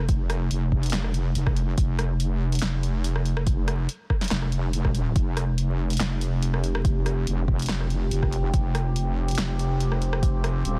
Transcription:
Already playing: F1
0.09 kick, closed hi-hat
0.30 cross-stick, closed hi-hat
0.51 F1, closed hi-hat
0.72 kick
0.83 closed hi-hat
0.86 closed hi-hat
0.90 snare, clap, closed hi-hat
1.04 cross-stick
1.14 closed hi-hat
1.35 F1, closed hi-hat
1.47 kick, cross-stick
1.56 closed hi-hat
1.78 F1, kick, closed hi-hat
1.99 cross-stick, closed hi-hat
2.20 closed hi-hat
2.52 closed hi-hat
2.55 closed hi-hat
2.59 F1, snare, clap, closed hi-hat
2.83 closed hi-hat
3.04 closed hi-hat
3.16 cross-stick
3.25 closed hi-hat
3.37 cross-stick
3.47 kick, closed hi-hat
3.68 cross-stick, closed hi-hat
3.89 closed hi-hat
4.10 kick, cross-stick
4.21 snare, closed hi-hat
4.24 closed hi-hat
4.28 F1, snare, clap, closed hi-hat
4.31 closed hi-hat
4.42 cross-stick
4.52 closed hi-hat
4.73 closed hi-hat
4.85 kick, cross-stick
4.90 E1
4.95 closed hi-hat
5.16 F1 F3 C4 G4, kick, closed hi-hat
5.37 cross-stick, closed hi-hat
5.58 closed hi-hat
5.90 closed hi-hat
5.93 closed hi-hat
5.97 snare, clap, closed hi-hat
6.00 F1, closed hi-hat
6.21 closed hi-hat
6.43 closed hi-hat
6.54 cross-stick
6.64 closed hi-hat
6.75 cross-stick
6.85 kick, closed hi-hat
7.06 cross-stick, closed hi-hat
7.27 F1, closed hi-hat
7.48 kick
7.59 closed hi-hat
7.62 closed hi-hat
7.66 snare, clap, closed hi-hat
7.81 cross-stick
7.90 closed hi-hat
8.11 F1, closed hi-hat
8.23 kick, cross-stick
8.33 closed hi-hat
8.54 F1, kick, closed hi-hat
8.75 cross-stick, closed hi-hat
8.96 closed hi-hat
9.28 closed hi-hat
9.31 closed hi-hat
9.35 F1, snare, clap, closed hi-hat
9.59 closed hi-hat
9.80 closed hi-hat
9.92 cross-stick
10.02 closed hi-hat
10.13 cross-stick
10.23 kick, closed hi-hat
10.44 cross-stick, closed hi-hat
10.65 D#1, closed hi-hat

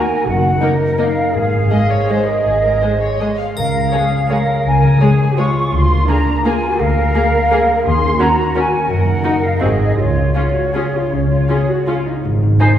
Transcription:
Already playing: D#3 A#3 D#4 A#4 D#5 G#5
0.11 A#4
0.27 F#1 F#2 F#4 F#5
0.44 A#3
0.61 A#3 D#4 A#4
0.81 A#4
0.98 A#3 D#4 A#4 F5
1.17 A#4
1.34 G#1 G#2 G#4 F5
1.53 G#3
1.71 G#3 G#4 D#5
1.91 C5 C#5
2.09 G#3 G#4 C5 D#5
2.28 A#4 C5
2.46 G#1 G#2 G#4
2.64 G#3 A#4
2.82 G#3 G#4 C5
3.02 C5 C#5
3.20 G#3 G#4 D#5
3.38 C5 F5
3.57 C#2 C#3 A#4 F5, triangle
3.74 G#3
3.92 G#3 G#4 C#5
4.12 C#5
4.30 G#3 G#4 A#4 C#5
4.49 C#5
4.65 C#2 C#3 G#5
4.83 G#3
5.00 G#3 G#4 C#5
5.20 C#5
5.37 G#3 F4 G#4 C#5 C#6
5.55 C#5
5.73 D2 D3 F4 C6
5.90 A#3
6.08 A#3 D4 G#4 A#4 A#5
6.27 A#4
6.45 A#3 F4 G#4 A#4 G#5
6.63 A#4
6.79 D2 D3 A#4 F5
6.97 A#3
7.14 A#3 G#4 A#4
7.34 A#4
7.51 A#3 G#4 A#4
7.70 A#4
7.85 D#2 D#3 G#4 C6
8.03 C#4
8.20 C#4 F#4 A#4 A#5
8.39 A#4
8.55 C#4 F#4 A#4 C#5 G#5
8.74 A#4
8.90 F#1 F#2 A#4 F#5
9.07 D#4
9.24 D#4 F#4 A#4
9.42 A#4 F5
9.60 G#1 G#2 C4 F#4 G#4 D#5
9.79 F#4 G#4
9.97 C#2 C#3 F4 C#5
10.16 C#4
10.35 C#4 F4 G#4
10.55 F#4 G#4
10.74 C#4 F4 G#4 C#5
10.94 F4 G#4
11.12 C#2 C#3 C#4
11.31 C#4 F4
11.49 C#4 F4 G#4
11.69 F#4 G#4
11.87 C#4 F4 G#4 C#5
12.08 D#4 G#4
12.25 G#1 G#2
12.42 D#3
12.60 D#4 G#4 C5 G#5

